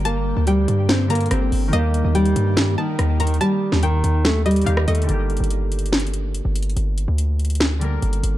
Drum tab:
HH |x-----------------------x-----------x-----------x-----------x--x--x--x--x-----------o-----------|x-----------x-----------x-----x-----x-----------x-----------------------x-----------x---x---x---|x-----------------------x-----------x-----------x-----------x--x--x--x--x-----------x---x---x---|x-----------x---x---x---x-----------x---x---x---x---x---x---x-----------x-----------x---x---x---|
SD |------------------------------------------------o-----------------------r-----------------------|------------------------------------------------o-----------------------r-----------------------|------------------o-----------------------------o-----------------------------r-----------------|------------------------------------------------o-----------------------------------------------|

HH |x-----------x-----------x-----------x--x--x--x--x-----------x-----------x-----x-----x-----------|
SD |------------------------------------------------o-----------------------------------------------|